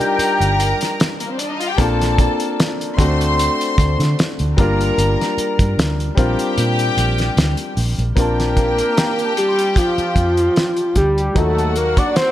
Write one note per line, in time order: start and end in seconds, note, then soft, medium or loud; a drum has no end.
0.00 1.74 G3 medium
0.00 1.74 D4 medium
0.00 1.75 D#4 medium
0.00 1.75 F4 medium
0.00 0.15 G4 medium
0.00 1.09 A#4 medium
0.00 1.76 A#4 medium
0.00 0.39 D5 medium
0.00 1.39 G5 loud
0.00 1.09 A#5 loud
0.00 closed hi-hat medium
0.19 muted fingered electric bass stroke soft
0.19 closed hi-hat loud
0.40 0.72 G1 medium
0.40 closed hi-hat medium
0.60 closed hi-hat medium
0.81 snare soft
0.81 closed hi-hat medium
1.00 snare medium
1.00 closed hi-hat medium
1.20 1.30 A#3 medium
1.20 1.30 A#4 medium
1.20 closed hi-hat medium
1.30 1.39 C4 medium
1.30 1.39 C5 medium
1.39 1.50 D4 medium
1.39 1.50 D5 medium
1.39 closed hi-hat medium
1.50 1.61 D#4 medium
1.50 1.60 D#5 medium
1.61 1.70 F4 medium
1.61 1.70 F5 loud
1.61 closed hi-hat medium
1.70 1.79 G4 medium
1.70 1.79 G5 loud
1.78 2.27 A#1 loud
1.78 2.98 A#3 medium
1.78 2.96 C4 medium
1.78 2.97 D4 medium
1.78 2.98 F4 medium
1.78 2.56 A4 medium
1.78 2.99 A4 medium
1.78 2.57 A5 medium
1.78 kick loud
1.78 closed hi-hat medium
2.01 snare soft
2.01 closed hi-hat medium
2.18 3.24 D5 medium
2.18 kick medium
2.18 closed hi-hat medium
2.40 closed hi-hat medium
2.60 snare loud
2.60 closed hi-hat loud
2.81 closed hi-hat medium
2.97 3.47 D2 loud
2.97 4.54 A3 medium
2.97 4.54 C4 medium
2.97 4.55 D4 medium
2.97 4.55 F#4 medium
2.97 4.56 A4 medium
2.97 4.15 C5 loud
2.97 4.15 C6 loud
2.97 kick loud
2.97 closed hi-hat medium
3.21 closed hi-hat medium
3.39 closed hi-hat medium
3.61 closed hi-hat medium
3.78 3.95 D2 medium
3.78 kick medium
3.78 closed hi-hat medium
4.00 4.14 D3 loud
4.00 snare soft
4.00 closed hi-hat medium
4.19 snare loud
4.19 closed hi-hat medium
4.39 4.54 D2 medium
4.39 closed hi-hat medium
4.57 4.90 G1 medium
4.57 6.13 G3 medium
4.57 6.14 A#3 medium
4.57 6.14 D4 medium
4.57 6.15 F4 medium
4.57 5.75 A#4 medium
4.57 5.75 A#5 loud
4.57 kick loud
4.57 closed hi-hat medium
4.61 6.16 A#4 medium
4.81 closed hi-hat medium
4.98 5.15 G1 loud
4.98 closed hi-hat medium
5.21 snare soft
5.21 closed hi-hat medium
5.38 muted fingered electric bass stroke medium
5.38 closed hi-hat medium
5.59 5.74 G2 loud
5.59 kick medium
5.59 closed hi-hat medium
5.78 6.09 D2 medium
5.78 snare loud
5.78 closed hi-hat loud
6.00 closed hi-hat medium
6.15 6.35 A#1 loud
6.15 8.11 G3 medium
6.15 8.12 C4 medium
6.15 8.13 D4 medium
6.15 8.13 F4 medium
6.15 7.74 G4 loud
6.15 7.22 C5 medium
6.15 7.74 G5 loud
6.15 kick loud
6.15 closed hi-hat medium
6.19 8.13 A#4 medium
6.39 closed hi-hat medium
6.58 6.89 A#2 medium
6.58 closed hi-hat loud
6.79 closed hi-hat medium
6.97 7.29 A#1 medium
6.97 closed hi-hat medium
7.18 snare soft
7.18 closed hi-hat medium
7.37 7.54 D2 medium
7.37 snare medium
7.37 closed hi-hat medium
7.57 closed hi-hat medium
7.77 7.94 A#1 medium
7.77 open hi-hat medium
7.98 8.13 A#1 medium
7.98 closed hi-hat medium
8.16 8.80 A#1 loud
8.16 11.31 A#3 medium
8.16 11.32 C4 medium
8.16 11.32 D4 medium
8.16 11.33 F4 medium
8.16 10.92 G4 medium
8.16 9.33 A#4 medium
8.16 10.92 G5 medium
8.16 kick medium
8.16 closed hi-hat medium
8.20 11.33 A5 medium
8.40 snare soft
8.40 closed hi-hat medium
8.57 kick medium
8.57 closed hi-hat medium
8.79 closed hi-hat medium
8.97 10.02 F5 soft
8.97 snare loud
8.97 closed hi-hat loud
9.19 closed hi-hat medium
9.25 10.24 A5 medium
9.37 9.79 G4 loud
9.37 closed hi-hat medium
9.48 10.47 C6 medium
9.59 closed hi-hat medium
9.76 10.97 F4 medium
9.76 kick medium
9.76 closed hi-hat medium
9.98 muted fingered electric bass stroke soft
9.98 closed hi-hat soft
10.16 10.48 F2 medium
10.16 kick medium
10.16 closed hi-hat medium
10.37 closed hi-hat medium
10.56 snare medium
10.56 closed hi-hat medium
10.77 closed hi-hat soft
10.96 11.28 D2 medium
10.96 11.39 G4 medium
10.96 kick medium
10.96 closed hi-hat medium
11.18 closed hi-hat soft
11.34 12.00 D#2 medium
11.34 11.42 F3 medium
11.34 12.32 A#3 medium
11.34 12.32 D#4 medium
11.34 12.32 F#4 medium
11.34 11.79 A4 medium
11.34 12.32 F#5 loud
11.34 kick medium
11.34 closed hi-hat medium
11.40 12.32 F#3 medium
11.58 closed hi-hat soft
11.76 11.99 A#4 medium
11.76 closed hi-hat medium
11.97 12.16 D5 medium
11.97 kick medium
11.97 closed hi-hat medium
12.16 12.32 C5 loud
12.16 snare loud
12.16 closed hi-hat loud